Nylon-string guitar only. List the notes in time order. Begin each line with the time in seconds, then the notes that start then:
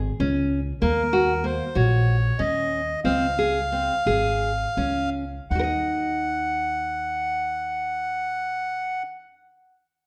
0.20 C#4
0.82 A#3
1.13 F#4
1.44 A#3
1.75 F#4
2.39 C#4
3.05 C4
3.39 G#4
3.72 C4
4.07 G#4
4.77 C#4
5.51 D#4 F#4
5.59 A#4
5.63 D#5